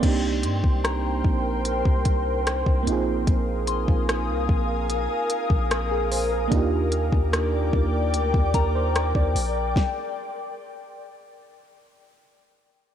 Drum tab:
CC |x---------------|----------------|----------------|----------------|
HH |x-x-x---x-x-x-x-|x-x-x---x-x-x-o-|x-x-x---x-x-x-o-|----------------|
SD |----r-------r---|----r-------r---|----r-------r---|o---------------|
BD |o--o--o--oo--o--|o--o--o----o----|o--o--o--oo--o--|o---------------|